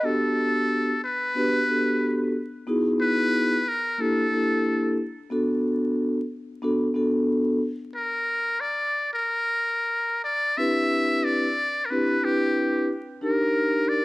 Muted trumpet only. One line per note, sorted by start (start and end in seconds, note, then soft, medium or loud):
0.05 1.03 A4 medium
1.04 2.31 B4 loud
3.01 3.70 B4 loud
3.69 4.02 A#4 medium
4.01 4.99 A4 medium
7.95 8.62 A#4 medium
8.61 9.13 D5 medium
9.13 10.22 A#4 medium
10.24 10.59 D5 medium
10.58 11.26 E5 loud
11.24 11.87 D5 loud
11.85 11.92 A#4 medium
11.90 12.26 B4 medium
12.24 12.90 G4 medium
13.24 13.90 A#4 medium
13.89 14.05 D5 loud